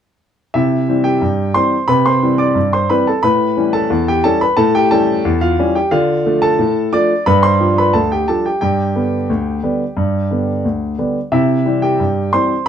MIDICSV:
0, 0, Header, 1, 2, 480
1, 0, Start_track
1, 0, Key_signature, 0, "major"
1, 0, Tempo, 674157
1, 382, Time_signature, 2, 2, 24, 8
1, 9030, End_track
2, 0, Start_track
2, 0, Title_t, "Grand piano"
2, 0, Program_c, 0, 0
2, 384, Note_on_c, 0, 76, 77
2, 389, Note_on_c, 0, 48, 72
2, 392, Note_on_c, 0, 64, 58
2, 524, Control_c, 0, 64, 127
2, 590, Note_off_c, 0, 48, 0
2, 628, Note_on_c, 0, 52, 45
2, 632, Note_on_c, 0, 60, 49
2, 633, Note_on_c, 0, 55, 40
2, 722, Note_off_c, 0, 64, 0
2, 740, Note_on_c, 0, 79, 76
2, 743, Note_off_c, 0, 76, 0
2, 747, Note_on_c, 0, 67, 53
2, 758, Note_off_c, 0, 52, 0
2, 761, Note_off_c, 0, 60, 0
2, 762, Note_off_c, 0, 55, 0
2, 865, Note_on_c, 0, 43, 60
2, 866, Control_c, 0, 64, 0
2, 1068, Note_off_c, 0, 43, 0
2, 1079, Note_off_c, 0, 67, 0
2, 1099, Note_on_c, 0, 84, 86
2, 1101, Note_off_c, 0, 79, 0
2, 1103, Note_on_c, 0, 52, 40
2, 1106, Note_on_c, 0, 55, 50
2, 1108, Note_on_c, 0, 72, 62
2, 1111, Note_on_c, 0, 60, 47
2, 1235, Note_off_c, 0, 52, 0
2, 1237, Note_off_c, 0, 55, 0
2, 1240, Note_off_c, 0, 60, 0
2, 1328, Note_off_c, 0, 72, 0
2, 1336, Note_on_c, 0, 83, 90
2, 1340, Note_off_c, 0, 84, 0
2, 1340, Note_on_c, 0, 48, 79
2, 1346, Note_on_c, 0, 71, 68
2, 1455, Note_off_c, 0, 71, 0
2, 1459, Note_off_c, 0, 83, 0
2, 1464, Note_on_c, 0, 84, 80
2, 1473, Note_on_c, 0, 72, 60
2, 1475, Control_c, 0, 64, 127
2, 1544, Note_off_c, 0, 48, 0
2, 1586, Note_on_c, 0, 52, 49
2, 1589, Note_on_c, 0, 55, 45
2, 1589, Note_on_c, 0, 60, 53
2, 1690, Note_off_c, 0, 72, 0
2, 1697, Note_on_c, 0, 86, 81
2, 1702, Note_off_c, 0, 84, 0
2, 1702, Note_on_c, 0, 74, 63
2, 1716, Note_off_c, 0, 52, 0
2, 1718, Note_off_c, 0, 55, 0
2, 1719, Note_off_c, 0, 60, 0
2, 1815, Note_on_c, 0, 43, 59
2, 1831, Control_c, 0, 64, 0
2, 1924, Note_off_c, 0, 74, 0
2, 1938, Note_off_c, 0, 86, 0
2, 1945, Note_on_c, 0, 84, 76
2, 1952, Note_on_c, 0, 72, 61
2, 2021, Note_off_c, 0, 43, 0
2, 2058, Note_off_c, 0, 72, 0
2, 2062, Note_off_c, 0, 84, 0
2, 2062, Note_on_c, 0, 83, 77
2, 2064, Note_on_c, 0, 52, 48
2, 2067, Note_on_c, 0, 60, 54
2, 2068, Note_on_c, 0, 55, 47
2, 2069, Note_on_c, 0, 71, 64
2, 2176, Note_off_c, 0, 71, 0
2, 2181, Note_off_c, 0, 83, 0
2, 2189, Note_on_c, 0, 81, 66
2, 2195, Note_off_c, 0, 52, 0
2, 2197, Note_off_c, 0, 60, 0
2, 2198, Note_off_c, 0, 55, 0
2, 2198, Note_on_c, 0, 69, 61
2, 2298, Note_on_c, 0, 83, 92
2, 2301, Note_off_c, 0, 69, 0
2, 2302, Note_on_c, 0, 45, 77
2, 2304, Note_off_c, 0, 81, 0
2, 2309, Note_on_c, 0, 71, 67
2, 2456, Control_c, 0, 64, 127
2, 2505, Note_off_c, 0, 45, 0
2, 2541, Note_on_c, 0, 52, 52
2, 2541, Note_on_c, 0, 55, 42
2, 2544, Note_on_c, 0, 61, 51
2, 2640, Note_off_c, 0, 71, 0
2, 2656, Note_on_c, 0, 81, 86
2, 2659, Note_off_c, 0, 83, 0
2, 2663, Note_on_c, 0, 69, 63
2, 2672, Note_off_c, 0, 52, 0
2, 2672, Note_off_c, 0, 55, 0
2, 2675, Note_off_c, 0, 61, 0
2, 2778, Note_on_c, 0, 40, 71
2, 2788, Control_c, 0, 64, 0
2, 2884, Note_off_c, 0, 69, 0
2, 2898, Note_off_c, 0, 81, 0
2, 2907, Note_on_c, 0, 79, 81
2, 2914, Note_on_c, 0, 67, 62
2, 2982, Note_off_c, 0, 40, 0
2, 3018, Note_on_c, 0, 81, 94
2, 3019, Note_off_c, 0, 67, 0
2, 3020, Note_on_c, 0, 52, 47
2, 3023, Note_off_c, 0, 79, 0
2, 3025, Note_on_c, 0, 55, 48
2, 3027, Note_on_c, 0, 61, 62
2, 3027, Note_on_c, 0, 69, 70
2, 3134, Note_off_c, 0, 69, 0
2, 3138, Note_off_c, 0, 81, 0
2, 3142, Note_on_c, 0, 83, 81
2, 3151, Note_off_c, 0, 52, 0
2, 3154, Note_on_c, 0, 71, 59
2, 3155, Note_off_c, 0, 55, 0
2, 3156, Note_off_c, 0, 61, 0
2, 3251, Note_on_c, 0, 81, 98
2, 3255, Note_on_c, 0, 45, 86
2, 3257, Note_off_c, 0, 71, 0
2, 3259, Note_off_c, 0, 83, 0
2, 3261, Note_on_c, 0, 69, 77
2, 3370, Note_off_c, 0, 69, 0
2, 3374, Note_off_c, 0, 81, 0
2, 3381, Note_on_c, 0, 79, 90
2, 3388, Control_c, 0, 64, 127
2, 3389, Note_on_c, 0, 67, 66
2, 3459, Note_off_c, 0, 45, 0
2, 3494, Note_off_c, 0, 67, 0
2, 3495, Note_on_c, 0, 81, 99
2, 3497, Note_on_c, 0, 52, 47
2, 3498, Note_off_c, 0, 79, 0
2, 3502, Note_on_c, 0, 55, 51
2, 3503, Note_on_c, 0, 61, 54
2, 3504, Note_on_c, 0, 69, 67
2, 3628, Note_off_c, 0, 52, 0
2, 3631, Note_off_c, 0, 55, 0
2, 3633, Note_off_c, 0, 61, 0
2, 3737, Note_on_c, 0, 40, 73
2, 3744, Control_c, 0, 64, 0
2, 3833, Note_off_c, 0, 69, 0
2, 3854, Note_off_c, 0, 81, 0
2, 3854, Note_on_c, 0, 77, 85
2, 3861, Note_on_c, 0, 65, 64
2, 3939, Note_off_c, 0, 40, 0
2, 3980, Note_on_c, 0, 52, 56
2, 3982, Note_on_c, 0, 55, 59
2, 3986, Note_on_c, 0, 61, 64
2, 4080, Note_off_c, 0, 65, 0
2, 4093, Note_off_c, 0, 77, 0
2, 4097, Note_on_c, 0, 79, 70
2, 4104, Note_on_c, 0, 67, 55
2, 4109, Note_off_c, 0, 52, 0
2, 4111, Note_off_c, 0, 55, 0
2, 4114, Note_off_c, 0, 61, 0
2, 4209, Note_off_c, 0, 67, 0
2, 4210, Note_on_c, 0, 77, 84
2, 4212, Note_on_c, 0, 50, 89
2, 4214, Note_off_c, 0, 79, 0
2, 4216, Note_on_c, 0, 65, 69
2, 4348, Control_c, 0, 64, 127
2, 4414, Note_off_c, 0, 50, 0
2, 4456, Note_on_c, 0, 53, 55
2, 4459, Note_on_c, 0, 57, 54
2, 4460, Note_on_c, 0, 62, 55
2, 4546, Note_off_c, 0, 65, 0
2, 4568, Note_off_c, 0, 77, 0
2, 4570, Note_on_c, 0, 81, 94
2, 4577, Note_on_c, 0, 69, 74
2, 4585, Note_off_c, 0, 53, 0
2, 4587, Note_off_c, 0, 57, 0
2, 4588, Note_off_c, 0, 62, 0
2, 4691, Note_on_c, 0, 45, 69
2, 4694, Control_c, 0, 64, 0
2, 4893, Note_off_c, 0, 45, 0
2, 4906, Note_off_c, 0, 69, 0
2, 4927, Note_off_c, 0, 81, 0
2, 4932, Note_on_c, 0, 53, 50
2, 4932, Note_on_c, 0, 86, 92
2, 4937, Note_on_c, 0, 62, 56
2, 4937, Note_on_c, 0, 74, 75
2, 4938, Note_on_c, 0, 57, 53
2, 5063, Note_off_c, 0, 53, 0
2, 5066, Note_off_c, 0, 62, 0
2, 5067, Note_off_c, 0, 57, 0
2, 5155, Note_off_c, 0, 74, 0
2, 5169, Note_off_c, 0, 86, 0
2, 5171, Note_on_c, 0, 83, 96
2, 5175, Note_on_c, 0, 43, 87
2, 5178, Note_on_c, 0, 71, 75
2, 5284, Note_off_c, 0, 71, 0
2, 5288, Note_off_c, 0, 83, 0
2, 5289, Note_on_c, 0, 84, 93
2, 5300, Note_on_c, 0, 72, 67
2, 5319, Control_c, 0, 64, 127
2, 5375, Note_off_c, 0, 43, 0
2, 5414, Note_on_c, 0, 53, 46
2, 5415, Note_on_c, 0, 55, 49
2, 5417, Note_on_c, 0, 62, 47
2, 5516, Note_off_c, 0, 72, 0
2, 5527, Note_off_c, 0, 84, 0
2, 5541, Note_on_c, 0, 83, 80
2, 5544, Note_off_c, 0, 53, 0
2, 5544, Note_off_c, 0, 55, 0
2, 5546, Note_off_c, 0, 62, 0
2, 5549, Note_on_c, 0, 71, 62
2, 5649, Note_off_c, 0, 71, 0
2, 5649, Note_on_c, 0, 81, 86
2, 5651, Control_c, 0, 64, 0
2, 5653, Note_off_c, 0, 83, 0
2, 5656, Note_on_c, 0, 38, 63
2, 5659, Note_on_c, 0, 69, 60
2, 5764, Note_off_c, 0, 69, 0
2, 5767, Note_off_c, 0, 81, 0
2, 5780, Note_on_c, 0, 79, 71
2, 5788, Note_on_c, 0, 67, 59
2, 5856, Note_off_c, 0, 38, 0
2, 5889, Note_off_c, 0, 67, 0
2, 5893, Note_off_c, 0, 79, 0
2, 5895, Note_on_c, 0, 81, 77
2, 5900, Note_on_c, 0, 53, 44
2, 5903, Note_on_c, 0, 55, 42
2, 5904, Note_on_c, 0, 69, 58
2, 5905, Note_on_c, 0, 62, 48
2, 6007, Note_off_c, 0, 69, 0
2, 6011, Note_off_c, 0, 81, 0
2, 6021, Note_on_c, 0, 79, 60
2, 6029, Note_off_c, 0, 53, 0
2, 6031, Note_off_c, 0, 55, 0
2, 6031, Note_on_c, 0, 67, 47
2, 6032, Note_off_c, 0, 62, 0
2, 6120, Note_off_c, 0, 79, 0
2, 6130, Note_on_c, 0, 79, 73
2, 6132, Note_off_c, 0, 67, 0
2, 6137, Note_on_c, 0, 43, 65
2, 6143, Note_on_c, 0, 67, 54
2, 6246, Control_c, 0, 64, 127
2, 6338, Note_off_c, 0, 43, 0
2, 6376, Note_on_c, 0, 50, 40
2, 6380, Note_on_c, 0, 55, 38
2, 6381, Note_on_c, 0, 59, 50
2, 6507, Note_off_c, 0, 50, 0
2, 6510, Note_off_c, 0, 55, 0
2, 6510, Note_off_c, 0, 59, 0
2, 6620, Control_c, 0, 64, 0
2, 6620, Note_on_c, 0, 38, 55
2, 6821, Note_off_c, 0, 38, 0
2, 6859, Note_on_c, 0, 50, 43
2, 6861, Note_on_c, 0, 55, 44
2, 6865, Note_on_c, 0, 59, 45
2, 6990, Note_off_c, 0, 50, 0
2, 6991, Note_off_c, 0, 55, 0
2, 6994, Note_off_c, 0, 59, 0
2, 7096, Note_on_c, 0, 43, 66
2, 7238, Control_c, 0, 64, 127
2, 7300, Note_off_c, 0, 43, 0
2, 7340, Note_on_c, 0, 50, 38
2, 7342, Note_on_c, 0, 55, 38
2, 7345, Note_on_c, 0, 59, 41
2, 7471, Note_off_c, 0, 50, 0
2, 7473, Note_off_c, 0, 55, 0
2, 7475, Note_off_c, 0, 59, 0
2, 7581, Control_c, 0, 64, 0
2, 7583, Note_on_c, 0, 38, 52
2, 7786, Note_off_c, 0, 38, 0
2, 7798, Note_off_c, 0, 67, 0
2, 7820, Note_off_c, 0, 79, 0
2, 7820, Note_on_c, 0, 50, 41
2, 7824, Note_on_c, 0, 59, 43
2, 7825, Note_on_c, 0, 55, 42
2, 7952, Note_off_c, 0, 50, 0
2, 7955, Note_off_c, 0, 59, 0
2, 7956, Note_off_c, 0, 55, 0
2, 8059, Note_on_c, 0, 48, 76
2, 8059, Note_on_c, 0, 76, 73
2, 8067, Note_on_c, 0, 64, 61
2, 8217, Control_c, 0, 64, 127
2, 8263, Note_off_c, 0, 48, 0
2, 8298, Note_on_c, 0, 52, 44
2, 8302, Note_on_c, 0, 55, 41
2, 8307, Note_on_c, 0, 60, 45
2, 8398, Note_off_c, 0, 64, 0
2, 8417, Note_on_c, 0, 79, 70
2, 8419, Note_off_c, 0, 76, 0
2, 8425, Note_on_c, 0, 67, 54
2, 8431, Note_off_c, 0, 52, 0
2, 8433, Note_off_c, 0, 55, 0
2, 8437, Note_off_c, 0, 60, 0
2, 8542, Note_on_c, 0, 43, 56
2, 8549, Control_c, 0, 64, 0
2, 8745, Note_off_c, 0, 43, 0
2, 8757, Note_off_c, 0, 67, 0
2, 8777, Note_on_c, 0, 84, 83
2, 8778, Note_off_c, 0, 79, 0
2, 8782, Note_on_c, 0, 52, 44
2, 8784, Note_on_c, 0, 55, 44
2, 8786, Note_on_c, 0, 60, 46
2, 8786, Note_on_c, 0, 72, 60
2, 8913, Note_off_c, 0, 52, 0
2, 8914, Note_off_c, 0, 55, 0
2, 8916, Note_off_c, 0, 60, 0
2, 9006, Note_off_c, 0, 72, 0
2, 9018, Note_off_c, 0, 84, 0
2, 9030, End_track
0, 0, End_of_file